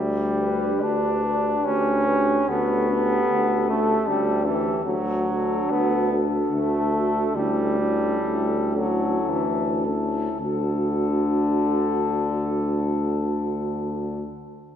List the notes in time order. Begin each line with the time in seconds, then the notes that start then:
Already playing: D2 G3
0.36 D4 G4 B4
0.82 D2 D4
1.24 D4 G4 B4
1.65 D2 C#4
2.07 D4 G4 B4
2.49 D2 B3 C#4 G4 A4
2.90 C#4 G4 A4
3.31 D2
3.69 A3 C#4 G4 A4
4.08 D2 G3
4.45 E3 C#4 G4 A4
4.84 D2 F#3
5.26 D4 F#4 A4
5.70 D2 B3
6.12 D4 F#4 A4
6.52 D2 A3
6.92 D4 F#4 A4
7.36 D2 G3 C#4 E4 A4
7.80 C#4 E4 A4
8.27 D2
8.77 F#3 C#4 E4 A4
9.29 D2 E3
9.85 C#4 E4 A4
10.40 D2 D3 D4 F#4 A4